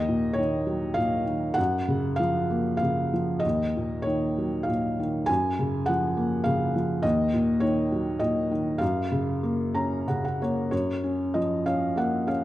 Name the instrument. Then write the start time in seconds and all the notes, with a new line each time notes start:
felt piano
Already playing: D#2 D#5
0.08 A#2
0.33 C#5
0.38 D#3
0.67 F#3
0.94 A#2 F5
1.26 D#3
1.54 F#5
1.58 F#2
1.88 C#3
2.16 F3 F5
2.50 A#3
2.77 F5
2.82 C#3
3.13 F3
3.40 D#5
3.45 D#2
3.77 A#2
4.02 C#5
4.07 D#3
4.38 F#3
4.63 F5
4.68 A#2
4.99 D#3
5.26 F#2 G#5
5.59 C#3
5.86 F3 F#5
6.17 A#3
6.44 C#3 F5
6.76 F3
7.02 D#2 D#5
7.33 A#2
7.60 D#3 C#5
7.92 F#3
8.19 A#2 D#5
8.51 D#3
8.78 F#2 F5
9.12 C#3
9.43 A#3
9.75 C#4 A#5
10.08 C#3 F#5
10.25 F#5
10.41 A#3 C#5
10.71 F#2 C#5
11.04 C#4
11.34 F3 D#5
11.66 C#4 F5
11.96 A#3 F#5
12.27 C#4 F5